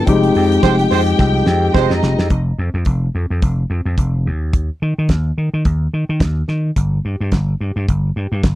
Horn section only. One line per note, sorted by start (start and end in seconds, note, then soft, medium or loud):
0.63 0.73 G#3 medium
0.63 0.73 G4 medium
0.63 0.73 C5 loud
0.90 1.01 G#3 medium
0.90 1.01 G4 medium
0.90 1.01 C5 medium
1.74 1.92 G#3 loud
1.74 1.92 G4 medium
1.74 1.92 C5 loud